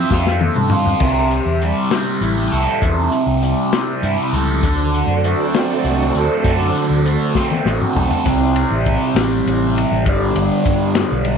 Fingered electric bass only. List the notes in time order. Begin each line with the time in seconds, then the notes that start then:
0.11 F2
0.55 G2
1.01 C2
1.45 E2
2.21 A1
2.52 C2
2.82 E2
3.26 C2
4.03 G2
4.33 C#2
4.63 D2
5.07 F#2
5.84 C2
6.14 D2
6.44 F#2
6.90 D2
7.65 A1
7.95 B1
8.25 C2
8.71 A1
9.15 A1
9.46 A1
9.91 A1
10.06 G1
10.35 G1
10.66 G2
11.11 B1